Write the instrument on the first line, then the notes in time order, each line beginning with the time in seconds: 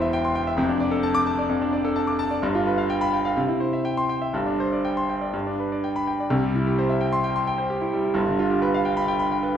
grand piano
Already playing: E1 E2 E4 C5 E5 G5 C6
0.02 E5
0.13 G5
0.25 C6
0.35 G5
0.47 E5
0.57 F1 F2
0.69 D4
0.80 D5
0.91 A4
1.03 A5
1.15 D6
1.27 A5
1.39 D5
1.49 F2
1.61 D4
1.73 D5
1.85 A4
1.96 A5
2.07 D6
2.19 A5
2.31 D5
2.42 G1 G2
2.55 F4
2.67 B4
2.78 F5
2.90 G5
3.01 B5
3.13 G5
3.25 F5
3.37 C3
3.48 E4
3.60 C5
3.73 E5
3.85 G5
3.97 C6
4.09 G5
4.21 E5
4.33 G1 G2
4.46 D4
4.60 C5
4.73 D5
4.85 G5
4.97 C6
5.09 G5
5.21 D5
5.33 G2
5.47 D4
5.60 B4
5.72 D5
5.84 G5
5.96 B5
6.07 G5
6.20 D5
6.30 C2 C3
6.43 G3
6.55 E4
6.67 G4
6.79 C5
6.89 E5
7.01 G5
7.12 C6
7.24 G5
7.36 C6
7.47 G5
7.58 C5
7.70 G4
7.81 E4
7.93 G3
8.04 E4
8.14 G1 G2
8.27 D3
8.39 F4
8.50 G4
8.62 B4
8.74 F5
8.85 G5
8.97 B5
9.08 G5
9.19 B5
9.31 G5
9.43 B4